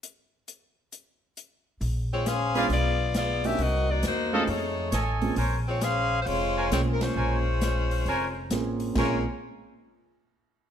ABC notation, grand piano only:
X:1
M:4/4
L:1/8
Q:"Swing" 1/4=134
K:Bbm
V:1 name="Grand piano"
z8 | z3 [A,_CD=DF] z3 [B,=CDEG] | z3 [=A,DEF_A] z3 [B,C^CF^G] | z6 [B,DFAc]2- |
[B,DFAc] z4 z [B,CDFA]2 | [B,CDFA] z6 z |]